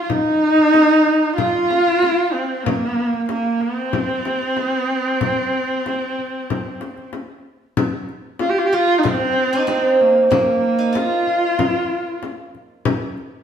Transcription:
0.03 F4
0.09 D#4, frame drum
0.58 frame drum
0.74 frame drum
1.07 frame drum
1.36 F4, frame drum
1.71 frame drum
1.87 frame drum
2.03 frame drum
2.33 C4
2.64 A#3, frame drum
3.13 frame drum
3.29 A#3, frame drum
3.60 C4, frame drum
3.93 frame drum
4.25 frame drum
4.42 frame drum
4.57 frame drum
5.21 frame drum
5.69 frame drum
5.86 frame drum
6.19 frame drum
6.50 frame drum
6.81 frame drum
6.97 frame drum
7.13 frame drum
7.77 frame drum
8.09 frame drum
8.39 F4, frame drum
8.50 G4
8.58 F4
8.66 G4
8.72 F4, frame drum
8.98 D#4
9.03 C4, frame drum
9.53 D#4
9.67 C4, frame drum
10.01 A#3, frame drum
10.30 A#3, frame drum
10.64 frame drum
10.79 D#4
10.93 F4, frame drum
11.27 frame drum
11.59 frame drum
12.23 frame drum
12.55 frame drum
12.85 frame drum
13.17 frame drum

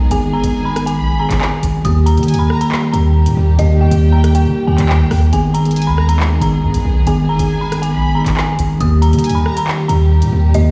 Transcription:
Already playing: B1 D#3 G#3 B3 G#4
0.10 G#1 D#3 B3 G#4 G#5, closed hi-hat
0.33 G1 G#5 A#5
0.43 G#1 D#3 B3, closed hi-hat
0.65 B5
0.74 D#3 B3 G#4, cross-stick, closed hi-hat
0.86 G#5, closed hi-hat
0.98 B1 B5
1.14 G#1
1.19 D#3 B3 G#4 A#5
1.30 G#1, clap, closed hi-hat
1.41 G#5, clap
1.63 G#1, closed hi-hat
1.84 D#2 D#3 G3 A#3 G4 D#6, closed hi-hat
2.06 A#5, closed hi-hat
2.16 D#3 A#3 G4, closed hi-hat
2.23 closed hi-hat
2.28 G#5, closed hi-hat
2.34 D#2, closed hi-hat
2.39 B5
2.50 A#5, cross-stick
2.61 A#5, closed hi-hat
2.72 clap
2.92 D#2 D#3 A#3 G4 A#5, closed hi-hat
3.26 A#2, closed hi-hat
3.37 D#2
3.57 D#2 D#3 A#3 G4 D#5, closed hi-hat
3.80 E2 G5
3.90 D#2 D#3 A#3, closed hi-hat
4.12 A#5
4.23 D#3 A#3 G4, cross-stick, closed hi-hat
4.35 G5, closed hi-hat
4.46 D#3
4.66 D#2 D#3 A#3 G4 G5 G#5
4.78 D#2, clap, closed hi-hat
4.89 G5, clap
5.00 C#2
5.11 D#2, cross-stick, open hi-hat
5.32 G#1 D#3 G#3 B3 G#4 G#5, closed hi-hat
5.54 A#5, closed hi-hat
5.64 D#3 B3 G#4, closed hi-hat
5.71 closed hi-hat
5.76 G#5, closed hi-hat
5.82 closed hi-hat
5.87 D#2 B5
5.98 A#5, cross-stick
6.09 A#5, closed hi-hat
6.20 clap
6.40 G#1 D#3 B3 G#4 A#5, closed hi-hat
6.63 G#2
6.74 G#1, closed hi-hat
6.85 B1
7.05 G#1 D#3 B3 G#4 G#5, closed hi-hat
7.28 G1 G#5 A#5
7.39 G#1 D#3 B3 G#4, closed hi-hat
7.61 B5
7.70 D#3 B3 G#4, cross-stick, closed hi-hat
7.82 G#5, closed hi-hat
7.93 B1 B5
8.10 G#1
8.15 D#3 B3 G#4 A#5
8.26 G#1, clap, closed hi-hat
8.37 G#5, clap
8.59 G#1, closed hi-hat
8.79 D#2 D#3 G3 A#3 G4 D#6, closed hi-hat
9.02 A#5, closed hi-hat
9.12 D#3 A#3 G4, closed hi-hat
9.19 closed hi-hat
9.24 G#5, closed hi-hat
9.29 D#2, closed hi-hat
9.35 B5
9.46 A#5, cross-stick
9.57 A#5, closed hi-hat
9.68 clap
9.88 D#2 D#3 A#3 G4 A#5, closed hi-hat
10.22 A#2, closed hi-hat
10.33 D#2
10.53 D#2 D#3 A#3 G4 D#5, closed hi-hat

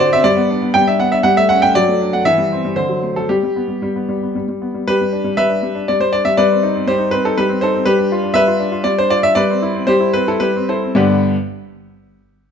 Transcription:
Already playing: D3 C4 C5
0.00 F#4 D5
0.12 C4 E5
0.24 G3 D5
0.37 B3
0.50 D4
0.62 B3
0.74 G3 G5
0.88 D4 E5
0.99 B3 F#5
1.12 D4 E5
1.23 G3 F#5
1.37 A3 E5
1.49 C#4 F#5
1.62 A3 G5
1.75 F#3 D5
1.88 A3
2.01 D4
2.13 A3 F#5
2.25 E3 E5
2.38 G3
2.52 C4
2.65 G3
2.76 D3 C5
2.89 F#3
3.03 A3
3.16 F#3 A4
3.29 G3 G4
3.43 G3
3.56 B3
3.68 G3
3.82 G3
3.96 B3
4.09 G3
4.23 B3
4.35 G3
4.49 G3
4.62 B3
4.74 G3
4.87 G3 G4 B4
5.01 G3
5.13 D4
5.24 G3
5.37 G3 B4 E5
5.49 D4
5.63 G3
5.75 D4
5.88 G3 D5
6.00 G3 C5
6.13 D4 D5
6.25 G3 E5
6.37 G3 B4 D5
6.51 C4
6.63 D#4
6.75 C4
6.87 G3 G4 C5
6.98 D#4
7.11 C4 B4
7.25 D#4 A4
7.37 G3 G4 B4
7.49 C4
7.61 D#4 A4 C5
7.75 C4
7.85 G3 G4 B4
7.98 D4
8.12 F4
8.23 D4
8.34 G3 B4 E5
8.47 F4
8.60 D4
8.72 F4
8.84 G3 D5
8.98 D4 C5
9.10 F4 D5
9.23 D4 E5
9.35 G3 B4 D5
9.50 C4
9.62 E4
9.75 C4
9.87 G3 G4 C5
10.00 E4
10.13 C4 B4
10.28 E4 A4
10.40 G3 G4 B4
10.56 C4
10.69 E4 A4 C5
10.83 C4
10.95 G2 D3 B3 D4 G4 B4

